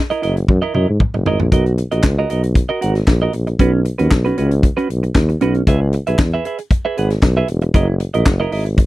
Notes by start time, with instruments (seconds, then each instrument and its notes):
0.10 clean electric guitar E4 A#4 D#5, closed hi-hat
0.22 tuba F#1, clean electric guitar E4 A#4 D#5, closed hi-hat
0.36 muted clean electric guitar stroke, closed hi-hat
0.48 tuba F#2, muted clean electric guitar stroke, kick, high tom
0.62 clean electric guitar E4 A#4 D#5
0.74 tuba F#2, clean electric guitar E4 A#4 D#5, mid tom
0.88 tuba G#2, muted clean electric guitar stroke
1.00 muted clean electric guitar stroke, kick, mid tom
1.14 tuba F#1, muted clean electric guitar stroke, mid tom
1.26 tuba G#1, clean electric guitar E4 A#4 D#5, floor tom
1.40 tuba A#1, muted clean electric guitar stroke, floor tom
1.52 tuba B1, clean electric guitar F#4 A#4 D#5, kick, closed hi-hat
1.66 muted clean electric guitar stroke, closed hi-hat
1.78 muted clean electric guitar stroke, closed hi-hat
1.91 tuba A#1, clean electric guitar F#4 A#4 D#5, closed hi-hat
2.03 tuba C#2, muted clean electric guitar stroke, kick, snare, clap
2.19 clean electric guitar F#4 A#4 D#5
2.30 tuba B1, clean electric guitar F#4 A#4 D#5, closed hi-hat
2.43 muted clean electric guitar stroke, closed hi-hat
2.55 muted clean electric guitar stroke, kick, closed hi-hat
2.69 clean electric guitar F#4 A#4 D#5
2.81 tuba G#1, clean electric guitar F#4 A#4 F#5, closed hi-hat
2.95 muted clean electric guitar stroke, snare, closed hi-hat
3.07 tuba A#1, muted clean electric guitar stroke, kick, snare, clap
3.22 clean electric guitar F#4 A#4 D#5
3.33 tuba A#1, muted clean electric guitar stroke, closed hi-hat
3.47 muted clean electric guitar stroke, closed hi-hat
3.59 tuba B1, clean electric guitar C#4 F#4 B4, kick, closed hi-hat
3.73 muted clean electric guitar stroke
3.85 muted clean electric guitar stroke, closed hi-hat
3.98 tuba D#2, clean electric guitar C#4 F#4 B4, closed hi-hat
4.11 tuba B1, muted clean electric guitar stroke, kick, snare, clap
4.25 clean electric guitar C#4 F#4 B4, closed hi-hat
4.38 tuba C#2, clean electric guitar C#4 F#4 B4, closed hi-hat
4.51 muted clean electric guitar stroke, closed hi-hat
4.63 muted clean electric guitar stroke, kick, closed hi-hat
4.77 clean electric guitar C#4 F#4 B4, closed hi-hat
4.89 tuba B1, muted clean electric guitar stroke, closed hi-hat
5.03 muted clean electric guitar stroke, closed hi-hat
5.15 tuba D#2, muted clean electric guitar stroke, kick, snare, clap
5.29 muted clean electric guitar stroke, closed hi-hat
5.41 tuba B1, clean electric guitar C#4 F#4 B4, closed hi-hat
5.54 muted clean electric guitar stroke, closed hi-hat
5.67 tuba C#2, clean electric guitar G#4 B4 E5, kick, closed hi-hat
5.81 muted clean electric guitar stroke
5.93 muted clean electric guitar stroke, closed hi-hat
6.07 tuba B1, clean electric guitar G#4 B4 E5, closed hi-hat
6.19 tuba E2, muted clean electric guitar stroke, kick, snare, clap
6.34 clean electric guitar G#4 B4 E5
6.45 clean electric guitar G#4 B4 E5, closed hi-hat
6.58 muted clean electric guitar stroke, closed hi-hat
6.71 muted clean electric guitar stroke, kick, closed hi-hat
6.85 clean electric guitar G#4 B4 E5
6.97 tuba G#1, clean electric guitar G#4 B4 F#5, closed hi-hat
7.10 muted clean electric guitar stroke, snare, closed hi-hat
7.22 tuba B1, muted clean electric guitar stroke, kick, snare, clap
7.37 clean electric guitar G#4 B4 E5
7.48 tuba E1, muted clean electric guitar stroke, closed hi-hat
7.61 muted clean electric guitar stroke, closed hi-hat
7.74 tuba F#1, clean electric guitar E4 A#4 D#5, kick, closed hi-hat
7.88 muted clean electric guitar stroke
8.00 muted clean electric guitar stroke, closed hi-hat
8.14 tuba A#1, clean electric guitar E4 A#4 D#5, closed hi-hat
8.26 tuba F#1, kick, snare, clap
8.40 clean electric guitar E4 A#4 D#5
8.52 tuba G#1, clean electric guitar E4 A#4 D#5, open hi-hat
8.65 muted clean electric guitar stroke, closed hi-hat
8.78 muted clean electric guitar stroke, kick, closed hi-hat